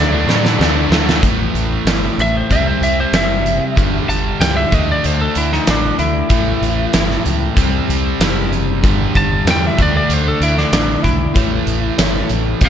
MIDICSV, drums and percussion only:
0, 0, Header, 1, 2, 480
1, 0, Start_track
1, 0, Tempo, 632911
1, 932, Time_signature, 4, 2, 24, 8
1, 9624, End_track
2, 0, Start_track
2, 0, Title_t, "Drums"
2, 220, Note_on_c, 9, 38, 81
2, 296, Note_off_c, 9, 38, 0
2, 340, Note_on_c, 9, 38, 69
2, 416, Note_off_c, 9, 38, 0
2, 464, Note_on_c, 9, 38, 93
2, 540, Note_off_c, 9, 38, 0
2, 698, Note_on_c, 9, 38, 100
2, 774, Note_off_c, 9, 38, 0
2, 827, Note_on_c, 9, 38, 94
2, 903, Note_off_c, 9, 38, 0
2, 933, Note_on_c, 9, 36, 98
2, 937, Note_on_c, 9, 42, 89
2, 1009, Note_off_c, 9, 36, 0
2, 1013, Note_off_c, 9, 42, 0
2, 1176, Note_on_c, 9, 42, 66
2, 1252, Note_off_c, 9, 42, 0
2, 1417, Note_on_c, 9, 42, 93
2, 1417, Note_on_c, 9, 54, 104
2, 1420, Note_on_c, 9, 38, 107
2, 1492, Note_off_c, 9, 42, 0
2, 1492, Note_off_c, 9, 54, 0
2, 1495, Note_off_c, 9, 38, 0
2, 1663, Note_on_c, 9, 42, 60
2, 1739, Note_off_c, 9, 42, 0
2, 1901, Note_on_c, 9, 36, 79
2, 1905, Note_on_c, 9, 42, 85
2, 1977, Note_off_c, 9, 36, 0
2, 1981, Note_off_c, 9, 42, 0
2, 2145, Note_on_c, 9, 42, 62
2, 2221, Note_off_c, 9, 42, 0
2, 2377, Note_on_c, 9, 42, 85
2, 2377, Note_on_c, 9, 54, 102
2, 2380, Note_on_c, 9, 38, 105
2, 2453, Note_off_c, 9, 42, 0
2, 2453, Note_off_c, 9, 54, 0
2, 2456, Note_off_c, 9, 38, 0
2, 2623, Note_on_c, 9, 42, 60
2, 2699, Note_off_c, 9, 42, 0
2, 2860, Note_on_c, 9, 42, 81
2, 2861, Note_on_c, 9, 36, 101
2, 2936, Note_off_c, 9, 42, 0
2, 2937, Note_off_c, 9, 36, 0
2, 3108, Note_on_c, 9, 42, 65
2, 3184, Note_off_c, 9, 42, 0
2, 3346, Note_on_c, 9, 42, 86
2, 3346, Note_on_c, 9, 54, 106
2, 3349, Note_on_c, 9, 38, 112
2, 3422, Note_off_c, 9, 42, 0
2, 3422, Note_off_c, 9, 54, 0
2, 3425, Note_off_c, 9, 38, 0
2, 3582, Note_on_c, 9, 36, 98
2, 3583, Note_on_c, 9, 42, 68
2, 3658, Note_off_c, 9, 36, 0
2, 3659, Note_off_c, 9, 42, 0
2, 3823, Note_on_c, 9, 42, 94
2, 3899, Note_off_c, 9, 42, 0
2, 4059, Note_on_c, 9, 42, 70
2, 4135, Note_off_c, 9, 42, 0
2, 4188, Note_on_c, 9, 38, 30
2, 4264, Note_off_c, 9, 38, 0
2, 4301, Note_on_c, 9, 42, 90
2, 4301, Note_on_c, 9, 54, 108
2, 4304, Note_on_c, 9, 38, 102
2, 4377, Note_off_c, 9, 42, 0
2, 4377, Note_off_c, 9, 54, 0
2, 4380, Note_off_c, 9, 38, 0
2, 4541, Note_on_c, 9, 42, 63
2, 4617, Note_off_c, 9, 42, 0
2, 4776, Note_on_c, 9, 42, 86
2, 4779, Note_on_c, 9, 36, 98
2, 4852, Note_off_c, 9, 42, 0
2, 4855, Note_off_c, 9, 36, 0
2, 5026, Note_on_c, 9, 42, 73
2, 5102, Note_off_c, 9, 42, 0
2, 5258, Note_on_c, 9, 42, 91
2, 5258, Note_on_c, 9, 54, 105
2, 5261, Note_on_c, 9, 38, 105
2, 5334, Note_off_c, 9, 42, 0
2, 5334, Note_off_c, 9, 54, 0
2, 5337, Note_off_c, 9, 38, 0
2, 5388, Note_on_c, 9, 38, 33
2, 5464, Note_off_c, 9, 38, 0
2, 5502, Note_on_c, 9, 42, 67
2, 5578, Note_off_c, 9, 42, 0
2, 5739, Note_on_c, 9, 36, 90
2, 5741, Note_on_c, 9, 42, 92
2, 5815, Note_off_c, 9, 36, 0
2, 5817, Note_off_c, 9, 42, 0
2, 5991, Note_on_c, 9, 42, 68
2, 6066, Note_off_c, 9, 42, 0
2, 6224, Note_on_c, 9, 42, 93
2, 6224, Note_on_c, 9, 54, 112
2, 6227, Note_on_c, 9, 38, 102
2, 6300, Note_off_c, 9, 42, 0
2, 6300, Note_off_c, 9, 54, 0
2, 6303, Note_off_c, 9, 38, 0
2, 6466, Note_on_c, 9, 42, 58
2, 6541, Note_off_c, 9, 42, 0
2, 6702, Note_on_c, 9, 36, 100
2, 6704, Note_on_c, 9, 42, 84
2, 6778, Note_off_c, 9, 36, 0
2, 6780, Note_off_c, 9, 42, 0
2, 6942, Note_on_c, 9, 36, 74
2, 6944, Note_on_c, 9, 42, 66
2, 7018, Note_off_c, 9, 36, 0
2, 7020, Note_off_c, 9, 42, 0
2, 7183, Note_on_c, 9, 42, 89
2, 7183, Note_on_c, 9, 54, 113
2, 7186, Note_on_c, 9, 38, 109
2, 7259, Note_off_c, 9, 42, 0
2, 7259, Note_off_c, 9, 54, 0
2, 7262, Note_off_c, 9, 38, 0
2, 7421, Note_on_c, 9, 36, 100
2, 7427, Note_on_c, 9, 42, 64
2, 7497, Note_off_c, 9, 36, 0
2, 7503, Note_off_c, 9, 42, 0
2, 7659, Note_on_c, 9, 42, 91
2, 7735, Note_off_c, 9, 42, 0
2, 7900, Note_on_c, 9, 42, 71
2, 7976, Note_off_c, 9, 42, 0
2, 8021, Note_on_c, 9, 38, 31
2, 8097, Note_off_c, 9, 38, 0
2, 8136, Note_on_c, 9, 42, 94
2, 8136, Note_on_c, 9, 54, 109
2, 8139, Note_on_c, 9, 38, 111
2, 8212, Note_off_c, 9, 42, 0
2, 8212, Note_off_c, 9, 54, 0
2, 8215, Note_off_c, 9, 38, 0
2, 8375, Note_on_c, 9, 36, 69
2, 8377, Note_on_c, 9, 42, 69
2, 8450, Note_off_c, 9, 36, 0
2, 8453, Note_off_c, 9, 42, 0
2, 8614, Note_on_c, 9, 36, 107
2, 8614, Note_on_c, 9, 42, 97
2, 8690, Note_off_c, 9, 36, 0
2, 8690, Note_off_c, 9, 42, 0
2, 8850, Note_on_c, 9, 42, 70
2, 8926, Note_off_c, 9, 42, 0
2, 9090, Note_on_c, 9, 42, 101
2, 9090, Note_on_c, 9, 54, 108
2, 9093, Note_on_c, 9, 38, 108
2, 9165, Note_off_c, 9, 42, 0
2, 9165, Note_off_c, 9, 54, 0
2, 9169, Note_off_c, 9, 38, 0
2, 9324, Note_on_c, 9, 42, 72
2, 9399, Note_off_c, 9, 42, 0
2, 9562, Note_on_c, 9, 42, 95
2, 9566, Note_on_c, 9, 36, 83
2, 9624, Note_off_c, 9, 36, 0
2, 9624, Note_off_c, 9, 42, 0
2, 9624, End_track
0, 0, End_of_file